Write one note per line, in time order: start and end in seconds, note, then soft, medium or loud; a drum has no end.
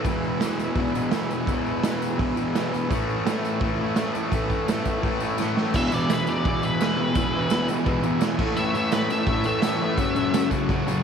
0.04 0.41 E2 medium
0.04 0.42 B2 medium
0.04 2.86 G#4 medium
0.04 2.87 B4 medium
0.04 2.87 E5 medium
0.04 kick loud
0.04 open hi-hat medium
0.04 tambourine medium
0.08 0.44 E3 loud
0.24 tambourine soft
0.40 0.74 E2 medium
0.40 0.76 B2 medium
0.40 snare loud
0.40 open hi-hat medium
0.40 tambourine loud
0.45 0.78 E3 medium
0.59 snare soft
0.59 tambourine medium
0.75 1.11 E2 loud
0.75 0.95 B2 loud
0.75 0.94 E3 loud
0.75 kick loud
0.75 open hi-hat medium
0.94 1.12 B2 medium
0.94 1.14 E3 medium
0.94 tambourine medium
1.11 1.48 E2 medium
1.11 1.32 B2 medium
1.11 snare loud
1.11 open hi-hat medium
1.11 tambourine medium
1.15 1.29 E3 medium
1.30 1.49 B2 medium
1.30 1.51 E3 medium
1.30 tambourine medium
1.47 1.82 E2 medium
1.47 1.83 B2 medium
1.47 kick loud
1.47 open hi-hat medium
1.47 tambourine medium
1.52 1.86 E3 loud
1.66 tambourine soft
1.83 2.17 E2 medium
1.83 2.19 B2 medium
1.83 2.20 E3 medium
1.83 snare loud
1.83 open hi-hat medium
1.83 tambourine loud
2.02 tambourine medium
2.18 2.54 E2 loud
2.18 2.38 B2 loud
2.18 2.36 E3 loud
2.18 kick loud
2.18 open hi-hat medium
2.36 2.55 B2 medium
2.36 2.57 E3 medium
2.36 tambourine medium
2.55 2.89 E2 medium
2.55 2.73 B2 medium
2.55 2.72 E3 medium
2.55 snare loud
2.55 open hi-hat medium
2.55 tambourine medium
2.72 2.89 B2 medium
2.72 2.91 E3 medium
2.72 tambourine medium
2.90 3.26 A2 loud
2.90 3.27 E3 medium
2.90 3.29 A3 medium
2.90 5.71 A4 medium
2.90 5.71 C#5 medium
2.90 5.71 E5 medium
2.90 kick loud
2.90 open hi-hat medium
2.90 tambourine medium
3.10 tambourine soft
3.26 3.59 A2 medium
3.26 3.62 E3 medium
3.26 3.63 A3 medium
3.26 snare loud
3.26 open hi-hat medium
3.26 tambourine medium
3.45 tambourine medium
3.60 3.94 A2 medium
3.60 3.81 E3 loud
3.60 kick loud
3.60 open hi-hat medium
3.64 3.78 A3 loud
3.79 3.96 E3 medium
3.79 3.97 A3 medium
3.95 4.29 A2 medium
3.95 4.16 E3 medium
3.95 4.12 A3 medium
3.95 snare loud
3.95 open hi-hat medium
3.95 tambourine medium
4.14 4.31 E3 medium
4.14 4.32 A3 medium
4.14 tambourine medium
4.31 4.66 A2 medium
4.31 4.67 E3 medium
4.31 4.69 A3 medium
4.31 kick loud
4.31 open hi-hat medium
4.31 tambourine medium
4.50 kick medium
4.50 tambourine soft
4.67 5.01 A2 medium
4.67 5.03 E3 medium
4.67 5.04 A3 medium
4.67 snare loud
4.67 open hi-hat medium
4.67 tambourine loud
4.85 kick medium
4.85 tambourine medium
5.02 5.37 A2 medium
5.02 5.22 E3 loud
5.02 5.19 A3 loud
5.02 kick loud
5.02 open hi-hat medium
5.20 5.39 E3 medium
5.20 5.40 A3 medium
5.20 tambourine medium
5.38 5.73 A2 medium
5.38 5.58 E3 medium
5.38 5.56 A3 medium
5.38 snare medium
5.38 tambourine loud
5.57 5.75 E3 medium
5.57 5.73 A3 medium
5.57 snare medium
5.74 5.92 E2 medium
5.74 5.91 B2 loud
5.74 5.93 E3 loud
5.74 8.35 G#4 medium
5.74 8.36 B4 medium
5.74 5.94 E5 loud
5.74 8.36 E5 medium
5.74 kick loud
5.74 crash loud
5.74 tambourine medium
5.74 crash medium
5.92 6.10 E2 loud
5.92 6.09 B2 medium
5.92 6.11 E3 loud
5.92 6.10 D5 medium
5.92 tambourine medium
6.09 6.27 E2 medium
6.09 6.27 B2 medium
6.09 6.29 E3 loud
6.09 snare loud
6.09 tambourine loud
6.09 crash medium
6.14 6.29 B4 medium
6.27 6.44 E2 medium
6.27 6.45 B2 loud
6.27 6.46 E3 medium
6.27 6.63 D5 medium
6.27 tambourine medium
6.45 6.63 E2 medium
6.45 6.64 B2 loud
6.45 6.64 E3 loud
6.45 kick loud
6.45 tambourine soft
6.45 crash medium
6.63 6.80 E2 medium
6.63 6.81 B2 medium
6.63 6.82 E3 medium
6.63 7.67 B4 loud
6.63 tambourine medium
6.81 6.96 E2 medium
6.81 6.97 B2 medium
6.81 6.99 E3 medium
6.81 snare loud
6.81 tambourine loud
6.81 crash medium
6.98 7.16 E2 medium
6.98 7.17 B2 medium
6.98 7.18 E3 medium
7.15 7.33 E2 medium
7.15 7.34 B2 medium
7.15 7.35 E3 loud
7.15 kick loud
7.15 tambourine medium
7.15 crash medium
7.34 7.51 E2 medium
7.34 7.52 B2 loud
7.34 7.53 E3 medium
7.50 7.68 E2 loud
7.50 7.68 B2 medium
7.50 7.70 E3 medium
7.50 snare loud
7.50 tambourine loud
7.50 crash medium
7.68 7.84 E2 medium
7.68 7.85 B2 medium
7.68 7.85 E3 medium
7.68 tambourine medium
7.85 8.02 E2 medium
7.85 8.02 B2 loud
7.85 8.03 E3 loud
7.85 kick loud
7.85 tambourine soft
7.85 crash medium
8.03 8.19 E2 medium
8.03 8.19 B2 medium
8.03 8.20 E3 loud
8.03 tambourine medium
8.20 8.38 E2 medium
8.20 8.38 B2 loud
8.20 8.38 E3 loud
8.20 snare loud
8.20 tambourine loud
8.20 crash medium
8.37 8.55 A2 loud
8.37 8.56 E3 loud
8.37 8.57 A3 loud
8.37 9.94 E4 medium
8.37 9.94 A4 medium
8.37 9.95 C#5 loud
8.37 kick loud
8.37 tambourine soft
8.37 crash loud
8.56 8.73 A2 loud
8.56 8.73 E3 loud
8.56 8.74 A3 loud
8.56 8.75 E5 medium
8.56 tambourine medium
8.56 crash medium
8.74 8.91 A2 medium
8.74 8.92 E3 medium
8.74 8.93 A3 medium
8.74 8.93 E5 medium
8.74 tambourine medium
8.92 9.08 A2 medium
8.92 9.09 E3 loud
8.92 9.10 A3 medium
8.92 9.10 B4 medium
8.92 snare loud
8.92 tambourine loud
8.92 crash medium
9.09 9.26 A2 medium
9.09 9.27 E3 medium
9.09 9.27 A3 medium
9.09 9.45 E5 medium
9.09 tambourine medium
9.27 9.44 A2 loud
9.27 9.44 E3 loud
9.27 9.46 A3 loud
9.27 kick loud
9.27 tambourine soft
9.27 crash medium
9.44 9.62 A2 medium
9.44 9.62 E3 medium
9.44 9.62 A3 loud
9.44 10.49 E5 loud
9.44 tambourine medium
9.62 9.79 A2 medium
9.62 9.80 E3 loud
9.62 9.81 A3 medium
9.62 snare loud
9.62 tambourine loud
9.62 crash medium
9.80 9.97 A2 medium
9.80 9.98 E3 loud
9.80 9.98 A3 medium
9.96 10.15 F#2 loud
9.96 10.16 C#3 medium
9.96 10.16 F#3 loud
9.96 11.03 F#4 medium
9.96 11.03 A4 medium
9.96 11.03 C#5 medium
9.96 kick loud
9.96 tambourine medium
9.96 crash medium
10.16 10.33 F#2 loud
10.16 10.34 C#3 loud
10.16 10.34 F#3 loud
10.16 tambourine medium
10.34 10.50 F#2 medium
10.34 10.50 C#3 medium
10.34 10.51 F#3 medium
10.34 snare loud
10.34 tambourine loud
10.34 crash medium
10.51 10.69 F#2 medium
10.51 10.69 C#3 medium
10.51 10.70 F#3 medium
10.51 kick medium
10.51 tambourine medium
10.69 10.86 F#2 loud
10.69 10.86 C#3 loud
10.69 10.87 F#3 loud
10.69 kick loud
10.69 tambourine soft
10.69 crash medium
10.87 11.03 F#2 medium
10.87 11.03 C#3 medium
10.87 11.03 F#3 medium
10.87 tambourine medium